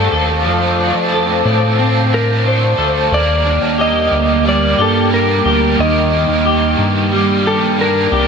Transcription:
Already playing: F3 A3 C4 D4 A4 C5 F5 A5 D6
0.12 D#2 A4
0.42 F2 F3 A3 F5
0.47 C4 D4
0.51 A4
0.79 D4
0.95 F2
1.12 A4
1.45 A2 D4
1.79 C4 D4
2.14 A#4
2.43 A3 C4 D4
2.47 D4 A4 C5
2.78 D2 A4
3.11 D#2 G3 A#3 D5 G5 D6
3.18 A#4
3.45 D4
3.61 D#2
3.78 G4 D#5
4.11 D2
4.43 G3 A#3 D4
4.49 D5
4.78 G2 G4 A4
5.10 G3 A#3 A#4
5.15 D4 A#4
5.45 D2 G4
5.76 D#2 D#3 G3
5.80 A#3 D#5
5.85 A#4
6.28 D#2
6.45 G4
6.78 G2
7.09 G3 A#3
7.45 G4 A4
7.77 G3 A#3 D4
7.81 D4 A#4
8.12 C2 G4

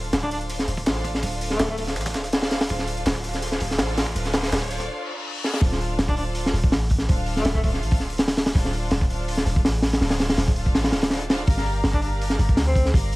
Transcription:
Already playing: D1 D4 F4 A4 C5 F5, riser
0.04 closed hi-hat
0.13 D1, snare, closed hi-hat, open hi-hat
0.23 D4, kick, snare
0.31 D4 F4 A4 C5 F5, closed hi-hat, open hi-hat
0.41 closed hi-hat
0.50 closed hi-hat, open hi-hat
0.59 snare
0.68 D1, closed hi-hat, open hi-hat
0.77 kick
0.86 A1 D4 F4 A4 C5 F5, snare, closed hi-hat, open hi-hat
1.04 kick, closed hi-hat, open hi-hat
1.15 snare
1.22 D1 D4 F4 A4 C5 F5, kick, closed hi-hat, open hi-hat
1.33 closed hi-hat
1.41 closed hi-hat, open hi-hat
1.50 A3, snare
1.59 D1, snare, closed hi-hat, open hi-hat
1.68 A3, kick
1.78 A3 D4 F4 A4 C5 F5, kick, closed hi-hat, open hi-hat
1.87 snare
1.96 A1, snare, closed hi-hat, open hi-hat
2.01 snare, closed hi-hat
2.06 kick, snare, closed hi-hat, open hi-hat
2.14 D1, snare, closed hi-hat
2.24 snare, open hi-hat
2.32 D4 F4 A4 C5 F5, snare, closed hi-hat, open hi-hat
2.42 snare, open hi-hat
2.51 snare, closed hi-hat, open hi-hat
2.61 snare, closed hi-hat, open hi-hat
2.69 D1 D4 F4 A4 C5 F5, kick, closed hi-hat, open hi-hat
2.79 snare
2.88 closed hi-hat, open hi-hat
2.97 closed hi-hat
3.06 D1, snare, closed hi-hat, open hi-hat
3.15 kick, snare
3.24 D4 F4 A4 C5 F5, closed hi-hat, open hi-hat
3.34 snare, closed hi-hat
3.42 closed hi-hat, open hi-hat
3.52 snare
3.60 D1, kick, open hi-hat
3.71 snare
3.79 A1 D4 F4 A4 C5 F5, snare, closed hi-hat, open hi-hat
3.97 snare, closed hi-hat, open hi-hat
4.06 kick
4.15 D1 D4 F4 A4 C5 F5, closed hi-hat, open hi-hat
4.25 snare, closed hi-hat
4.33 snare, closed hi-hat, open hi-hat
4.43 snare, open hi-hat
4.52 D1, snare, closed hi-hat, open hi-hat
4.62 kick
4.70 D4 F4 A4 C5 F5, closed hi-hat, open hi-hat
4.80 kick, snare
4.89 reverse cymbal
5.44 snare
5.54 snare
5.61 D1 D4 F4 A4 C5 F5, kick, open hi-hat
5.72 snare
5.81 open hi-hat
5.99 D1, snare, open hi-hat
6.08 D4, kick
6.16 D4 F4 A4 C5 F5, open hi-hat
6.35 open hi-hat
6.46 snare
6.53 D1, open hi-hat
6.64 kick
6.72 A1, snare, open hi-hat
6.90 kick, open hi-hat
6.98 snare
7.08 D1 D4 F4 A4 C5 F5, kick, open hi-hat
7.26 open hi-hat
7.36 A3, snare
7.45 D1, snare, open hi-hat
7.54 A3, kick
7.63 A3 D4 F4 A4 C5 F5, kick, open hi-hat
7.73 snare
7.82 A1, open hi-hat
7.91 kick, open hi-hat
8.00 D1, snare
8.10 open hi-hat
8.18 snare, open hi-hat
8.28 snare, open hi-hat
8.37 snare, open hi-hat
8.46 snare, open hi-hat
8.54 D1 D4 F4 A4 C5 F5, kick, open hi-hat
8.65 snare
8.73 open hi-hat
8.91 D1, snare, open hi-hat
9.01 kick
9.09 D4 F4 A4 C5 F5, open hi-hat
9.28 open hi-hat
9.37 snare
9.46 D1, open hi-hat
9.56 kick
9.64 A1, snare, open hi-hat
9.82 snare, open hi-hat
9.93 snare, open hi-hat
10.01 D1 D4 F4 A4 C5 F5, snare, open hi-hat
10.10 snare, open hi-hat
10.20 snare, open hi-hat
10.29 snare, open hi-hat
10.37 D1, snare, open hi-hat
10.48 kick
10.56 D4 F4 A4 C5 F5, open hi-hat
10.66 kick
10.74 A1, snare, open hi-hat
10.84 snare, open hi-hat
10.92 D1, snare, open hi-hat
11.02 snare, open hi-hat
11.10 D4 F4 A4 C5 F5, snare, open hi-hat
11.21 closed hi-hat
11.28 D4 F4 A4 C5 F5, snare, open hi-hat
11.47 G1 G4 A#4 D5 F5 A#5, kick, open hi-hat
11.57 snare
11.66 open hi-hat
11.84 G1, snare, open hi-hat
11.93 D4, kick
12.02 D4 G4 A#4 D5 F5 A#5, open hi-hat
12.21 open hi-hat
12.30 snare
12.39 G1, open hi-hat
12.49 kick
12.57 D2, snare, open hi-hat
12.67 C4
12.75 kick, open hi-hat
12.85 snare
12.94 G1 G4 A#4 D5 F5 A#5, kick, open hi-hat
13.12 open hi-hat

